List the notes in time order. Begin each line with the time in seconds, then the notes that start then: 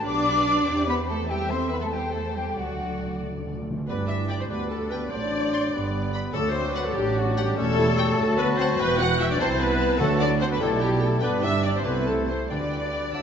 0.06 B1 B3 D4 G4 B4 D5 D6
0.68 E2 C4 C5
0.89 B3 B4 B5
1.08 A3 A4 A5
1.30 G3 G4 A4 E5 G5
1.51 C4 C5 C6
1.71 B3 B4 B5
1.82 A3 A4 A5
1.93 G3 G4 C5 G5
2.14 A3 A4 A5
2.35 G3 G4 G5
2.57 D2 D3 F#3 D4 F#4 D5 F#5
2.75 D3
2.90 D3
2.99 D3
3.06 D3
3.14 D3
3.22 D3
3.31 D3
3.38 D3
3.47 D3
3.54 D3
3.62 D3
3.71 D3
3.78 D3
3.88 G1 G2 G3 B3 D4 B4 D5
4.08 E4 E5
4.29 D4 D5 G5
4.39 C4 C5
4.49 D2 G3 B3 B4 D5
4.69 A3 A4
4.90 B3 B4 G5
5.10 A1 A2 F#3 D4 C5 D5
5.53 C6
5.73 G1 G2 G3 B3 B4
6.14 B5
6.33 D2 D3 F#3 A3 F#4 A4 D5
6.54 C4 C5
6.74 B3 B4 F#5
6.85 A3 A4
6.95 A1 A2 G3 D4 G4
7.16 F#3 F#4
7.37 G3 G4 F#5
7.56 E1 E2 G3 A3 C#4 A4 C#5
7.79 E4
7.98 F#4 G5
8.17 D2 F#3 A5
8.37 B3 B4
8.58 C4 C5 F#5
8.79 E1 E2 E3 B3 B4 G5
9.00 F#4 F#5 G5
9.20 E4 E5 G5
9.30 D4 D5
9.39 C2 C3 E3 C4 E4 C5 A5
9.60 B3 B4 A5
9.80 A5
9.99 D2 D3 F#3 A3 F#4 A4 F#5 A5
10.19 D4 D5 F#5
10.40 C4 C5 F#5
10.50 B3 B4
10.59 B1 B2 G3 A3 E4 A4 D5 G5
10.81 G3 G4 G5
11.00 A3 A4 G5
11.20 G1 G2 G3 B3 D4 B4 D5 G5
11.41 E4 E5 G5
11.63 D4 D5 G5
11.74 C4 C5
11.84 C2 C3 A3 B3 E4 B4 C5 A5
12.06 A3 A4 A5
12.27 C4 C5 A5
12.50 D2 D3 G3 D4 B4 D5 G5
12.70 G5
12.93 G5
13.14 D2 D3 F#3 E4 E5 F#5 A5 E6